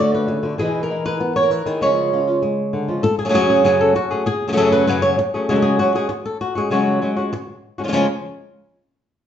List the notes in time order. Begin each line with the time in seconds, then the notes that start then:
Already playing: D3 A3 D4
0.00 F#4 D5
0.15 B4
0.27 C#3, muted nylon-string guitar stroke
0.43 D3 A3 D4 F#4
0.58 E2 B2 E3 G#3 B3 E4 G#4
0.83 A#4
0.90 E3 G#3 B3 E4
1.05 E3 G#3 B3 E4 B4
1.20 B3, muted nylon-string guitar stroke
1.36 C#5
1.43 A#4
1.50 E3 B4
1.66 D#3 E3 G#3 B3 E4 G#4
1.81 C#3 F3 G#3 C#4 F4 G#4 C#5
2.12 F3 G#3 C#4 F4
2.27 G#3 C#4 F4
2.42 G#3, muted nylon-string guitar stroke
2.73 D3
2.88 F3 G#3 C#4 F4
3.03 A4, muted nylon-string guitar stroke
3.19 G#4
3.25 C#3 F#3 A3 C#4 G#4
3.29 C#3 F#3 A3 C#4 G#4
3.34 F#2 C#3 F#3 C#4 F#4 G#4
3.50 G#4
3.64 F#2 C#3 F#3 C#4 G#4
3.81 A4
3.95 F#4, muted nylon-string guitar stroke
4.11 F#3 A3 C#4 G#4
4.26 G#4, muted nylon-string guitar stroke
4.48 C#3 F#3 A3 C#4 G#4
4.53 C#3 F#3 A3 C#4 G#4
4.57 F#2 C#3 F#3 A3 C#4 G#4 A4
4.72 B4
4.87 F#2 C#3 F#3 B4
5.02 C#5
5.18 muted nylon-string guitar stroke
5.34 F#3 A3 C#4 G#4
5.49 C#3 F#3 G#3 C#4 F#4 G#4
5.56 A4
5.62 G#4
5.79 F#3 G#3 C#4 F#4
5.95 G#3 C#4 F#4 G#4
6.09 muted nylon-string guitar stroke
6.26 A4
6.41 F#4
6.55 G#3 C#4 F#4 G#4
6.71 C#3 F#3 G#3 C#4 F#4
7.01 F#3 G#3 C#4 F#4
7.16 G#3 C#4 F#4
7.33 muted nylon-string guitar stroke
7.78 G#3 C#4 F#4
7.84 F3 G#3 C#4 F4
7.88 F3 G#3 C#4 F4
7.92 C#3 F3 G#3 C#4 F4